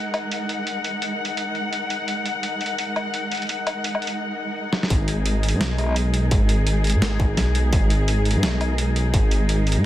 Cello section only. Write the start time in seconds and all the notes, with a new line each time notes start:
Already playing: G#3 D#4 A#4 F#5
4.90 G#3 D#4 G#4 A#4